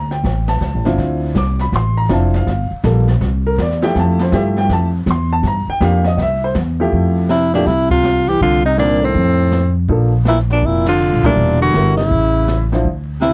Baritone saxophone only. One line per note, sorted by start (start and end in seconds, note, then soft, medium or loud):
7.29 7.52 C3 medium
7.53 7.69 A#2 medium
7.67 7.91 C3 medium
7.92 8.30 C3 medium
8.28 8.41 E3 medium
8.42 8.64 D3 medium
8.65 8.77 C3 medium
8.77 9.02 A#2 medium
9.01 9.76 A2 medium
10.28 10.39 A#2 medium
10.51 10.65 A#2 medium
10.65 10.88 A#2 medium
10.88 11.22 D3 medium
11.24 11.59 A#2 medium
11.61 11.96 D3 medium
11.96 12.67 C#3 medium
13.21 13.33 C3 medium